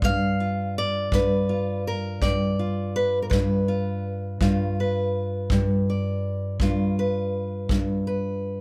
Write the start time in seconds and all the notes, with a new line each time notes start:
Already playing: G3
0.02 G2 F5, kick
0.40 F4
0.78 D5
1.12 G2 B4, kick
1.49 F4
1.87 A#4
2.21 G2 D5, kick
2.59 F4
2.96 B4
3.22 A#4
3.30 G2 B4, kick
3.68 F4
4.41 G2 F4, kick
4.80 B4
5.50 G2, kick
5.90 D5
6.60 G2 F4, kick
6.99 B4
7.69 G2, kick
8.07 B4